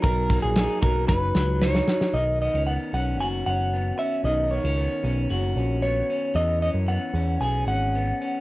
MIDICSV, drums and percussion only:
0, 0, Header, 1, 2, 480
1, 0, Start_track
1, 0, Key_signature, 5, "major"
1, 0, Tempo, 525855
1, 39, Time_signature, 4, 2, 24, 8
1, 7672, End_track
2, 0, Start_track
2, 0, Title_t, "Drums"
2, 34, Note_on_c, 9, 36, 110
2, 34, Note_on_c, 9, 44, 66
2, 34, Note_on_c, 9, 46, 86
2, 125, Note_off_c, 9, 36, 0
2, 125, Note_off_c, 9, 44, 0
2, 125, Note_off_c, 9, 46, 0
2, 272, Note_on_c, 9, 44, 64
2, 273, Note_on_c, 9, 36, 99
2, 277, Note_on_c, 9, 46, 78
2, 363, Note_off_c, 9, 44, 0
2, 364, Note_off_c, 9, 36, 0
2, 368, Note_off_c, 9, 46, 0
2, 510, Note_on_c, 9, 46, 100
2, 511, Note_on_c, 9, 44, 66
2, 514, Note_on_c, 9, 38, 114
2, 601, Note_off_c, 9, 46, 0
2, 603, Note_off_c, 9, 44, 0
2, 605, Note_off_c, 9, 38, 0
2, 748, Note_on_c, 9, 46, 72
2, 751, Note_on_c, 9, 44, 65
2, 755, Note_on_c, 9, 36, 89
2, 840, Note_off_c, 9, 46, 0
2, 842, Note_off_c, 9, 44, 0
2, 846, Note_off_c, 9, 36, 0
2, 989, Note_on_c, 9, 38, 60
2, 993, Note_on_c, 9, 36, 99
2, 1080, Note_off_c, 9, 38, 0
2, 1085, Note_off_c, 9, 36, 0
2, 1232, Note_on_c, 9, 38, 82
2, 1323, Note_off_c, 9, 38, 0
2, 1475, Note_on_c, 9, 38, 85
2, 1566, Note_off_c, 9, 38, 0
2, 1595, Note_on_c, 9, 38, 84
2, 1686, Note_off_c, 9, 38, 0
2, 1713, Note_on_c, 9, 38, 97
2, 1804, Note_off_c, 9, 38, 0
2, 1836, Note_on_c, 9, 38, 96
2, 1928, Note_off_c, 9, 38, 0
2, 7672, End_track
0, 0, End_of_file